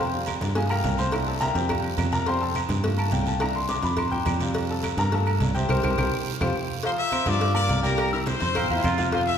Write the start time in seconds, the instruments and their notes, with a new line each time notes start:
Already playing: fingered electric bass F2
0.14 upright piano G3 C4 F4, high conga
0.26 cowbell, high conga, low timbale, low agogo, short guiro, claves
0.41 fingered electric bass G2, cowbell, high conga, short guiro
0.55 upright piano A3 A#3 F4 G#4 G#5, cowbell, high conga, low agogo, long guiro
0.70 upright piano A#4 F5 G5 A#5, high conga, low agogo, claves
0.84 fingered electric bass C2, cowbell, high conga, low timbale, short guiro
0.98 upright piano C5 C6, high conga, low agogo, short guiro
1.11 upright piano A#3 D4 E4, cowbell, low agogo, long guiro, claves
1.27 upright piano A4 A5, high conga
1.40 upright piano A#4 E5 G5 A#5, cowbell, high conga, low timbale, low agogo, short guiro
1.55 fingered electric bass F2, upright piano G4 C5 E5 G5, cowbell, short guiro
1.69 upright piano G3 C4 F4, cowbell, high conga, low conga, low agogo, long guiro, claves
1.84 high conga, low agogo
1.97 fingered electric bass F2, cowbell, high conga, low timbale, low agogo, short guiro, claves
2.12 upright piano A#4 A#5, cowbell, high conga, short guiro
2.26 upright piano G3 C4 F4 C5 F5 G5 C6, cowbell, high conga, low agogo, long guiro
2.40 upright piano A4 A5, high conga
2.55 cowbell, high conga, low timbale, low agogo, short guiro, claves
2.69 fingered electric bass G2, cowbell, high conga, short guiro
2.83 upright piano A3 A#3 F4, cowbell, high conga, low agogo, long guiro
2.98 upright piano A5, high conga, low agogo, claves
3.11 fingered electric bass C2, upright piano G5, cowbell, high conga, low timbale, short guiro
3.26 upright piano A5, high conga, low agogo, short guiro
3.40 upright piano A#3 D4 E4 A#5, cowbell, high conga, low agogo, long guiro, claves
3.55 upright piano C6, high conga
3.69 upright piano D6, cowbell, high conga, low timbale, low agogo, short guiro
3.83 fingered electric bass F2, upright piano B5, cowbell, short guiro
3.97 upright piano C6, cowbell, high conga, low conga, low agogo, long guiro, claves
4.12 upright piano G5, high conga, low conga, low agogo
4.26 fingered electric bass F2, cowbell, high conga, low timbale, low agogo, short guiro, claves
4.40 upright piano G3 C4 F4, cowbell, high conga, short guiro
4.54 cowbell, high conga, low agogo, long guiro
4.69 upright piano A4 A5, high conga
4.83 cowbell, high conga, low timbale, low agogo, short guiro, claves
4.97 fingered electric bass G2, upright piano A#4 A#5, cowbell, high conga, short guiro
5.12 upright piano A3 A#3 F4 A4 A5, cowbell, high conga, low agogo, long guiro
5.27 high conga, low agogo, claves
5.40 fingered electric bass C2, cowbell, high conga, low timbale, short guiro
5.55 upright piano G4 C5 E5 G5, high conga, low agogo, short guiro
5.69 fingered electric bass C2, upright piano G4 A#4 C5, cowbell, high conga, high timbale, long guiro, claves
5.83 fingered electric bass C2, upright piano G4 A#4 C5, cowbell, high conga, high timbale, long guiro, claves
5.98 fingered electric bass C2, upright piano G4 A#4 C5, cowbell, high conga, high timbale, long guiro, claves
6.41 fingered electric bass F2, upright piano F4 G4 C5, cowbell, high conga, high timbale, long guiro, claves
6.83 upright piano F3 F4 F5, trumpet section C5 C6, cowbell, high conga, low agogo, long guiro
6.98 trumpet section E5 E6, high conga
7.12 upright piano C4 C5 C6, cowbell, high conga, low timbale, low agogo, short guiro, claves
7.26 fingered electric bass G2, upright piano F3 F4 F5, trumpet section D5 D6, cowbell, high conga, short guiro
7.41 cowbell, high conga, low agogo, long guiro
7.54 upright piano A#3 A#4 A#5, trumpet section D5 D6, high conga, low agogo, claves
7.68 fingered electric bass C2, upright piano F4 F5 F6, cowbell, high conga, low timbale, short guiro
7.83 upright piano G3 G4 G5, trumpet section A#4 A#5, high conga, low agogo, short guiro
7.97 cowbell, high conga, low agogo, long guiro, claves
8.13 upright piano E4 E5 E6, trumpet section A#4 A#5, high conga
8.26 trumpet section C5 C6, cowbell, high conga, low timbale, low agogo, short guiro
8.40 fingered electric bass F2, upright piano C4 C5 C6, cowbell, short guiro
8.55 trombone section C4, upright piano F4 F5 F6, cowbell, high conga, low conga, low agogo, long guiro, claves
8.70 fingered electric bass E2, upright piano F4 F5 F6, high conga, low agogo
8.76 trombone section E4
8.84 fingered electric bass F2, trombone section F4, cowbell, high conga, low timbale, low agogo, short guiro, claves
8.98 upright piano F4 F5 F6, cowbell, high conga, short guiro
9.12 upright piano F3 F4 F5, trumpet section C5 C6, cowbell, high conga, low agogo, long guiro
9.27 trumpet section E5 E6, high conga